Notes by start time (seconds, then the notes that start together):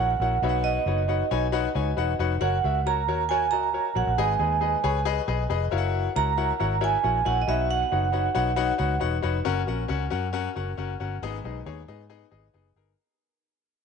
Already playing: F#5
0.00 A#1 E4 F#4 A#4 C#5 F#5
0.20 A#1 E4 F#4 A#4 C#5 F#5
0.42 B1 B2 D#4 F#4 B4 C#5 E5
0.49 F#5
0.64 D#5
0.86 F#1 D#4 F#4 B4 C#5 F#5
1.08 D#4 F#4 B4 C#5 F#5
1.31 B1 D#4 F#4 B4 C#5 G#5
1.52 D#4 F#4 B4 C#5 F#5
1.75 C#2 D#4 F#4 B4 C#5 G#5
1.97 E1 D#4 F#4 B4 C#5 F#5
2.19 F1 D#4 F#4 B4 C#5 F#5
2.41 F#1 F#4 A#4 C#5 F#5
2.64 C#2 F#4 A#4 E5
2.86 F#4 A#4 C#5 A#5
3.08 D#2 F#4 A#4 C#5
3.29 F#4 A#4 C#5 G#5
3.51 C#2 F#4 A#4 D#5 A#5
3.74 F#4 A#4 C#5
3.95 A#1 F#4 A#4 C#5 F#5
4.07 A#1
4.17 G#1 G#2 G#4 B4 D#5 G#5
4.39 D#2 G#4 B4 D#5
4.61 G#4 B4 D#5
4.84 C#2 G#4 B4 C#5
5.05 G#4 B4 D#5
5.28 B1 G#4 B4 D#5
5.50 F1 G#4 B4 D#5
5.71 F#1 E4 F#4 A#4 C#5 F5
5.78 F#5
6.16 C#2 E4 F#4 A#4 C#5 F#5 A#5
6.37 E4 F#4 A#4 C#5 F#5
6.59 G#1 E4 F#4 A#4 C#5 F#5
6.81 E4 F#4 A#4 C#5 E5 G#5
7.03 A#1 E4 F#4 A#4 C#5 F#5
7.25 A#1 E4 F#4 A#4 C#5 F#5 G#5
7.42 D#5
7.48 B1 B2 D#4 F#4 B4 C#5 E5 F#5
7.71 F#5
7.92 F#1 D#4 F#4 B4 C#5 F#5
8.12 D#4 F#4 B4 C#5 F#5
8.35 B1 D#4 F#4 B4 C#5 F#5
8.56 D#4 F#4 B4 C#5 F#5
8.78 C#2 D#4 F#4 B4 C#5 F#5
9.00 E1 D#4 F#4 B4 C#5 F#5
9.22 F1 D#4 F#4 B4 C#5 F#5
9.45 F#1 C#4 F#4 A#4 F#5
9.67 A#1 C#4 F#4 A#4 F#5
9.88 C#2 C#4 F#4 A#4 F#5
10.10 F#2 C#4 F#4 A#4 F#5
10.33 C#4 F#4 A#4 F#5
10.56 F#1 C#4 F#4 A#4 F#5
10.77 F#1 C#4 F#4 A#4 F#5
11.00 G1 C#4 F#4 A#4 F#5
11.22 G#1 G#2 B3 D#4 G#4 D#5
11.44 B1 B3 D#4 G#4 D#5
11.66 D#2 B3 D#4 G#4 C#5
11.88 G#2 B3 D#4 G#4 D#5
12.09 B3 D#4 G#4 D#5
12.31 G#1 B3 D#4 G#4 D#5
12.54 F#1 B3 D#4 G#4 D#5
12.76 G1 B3 D#4 G#4 A#4